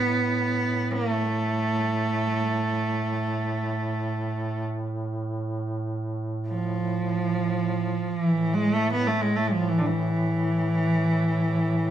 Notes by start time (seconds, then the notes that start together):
Already playing: A2 B3
0.91 A#3
1.10 A3
6.48 F3
8.08 F3
8.20 E3
8.27 A2
8.54 G#3
8.74 A3
8.92 B3
9.07 A3
9.21 G#3
9.36 A3
9.47 G#3
9.52 F3
9.69 E3
9.78 D3
9.86 E3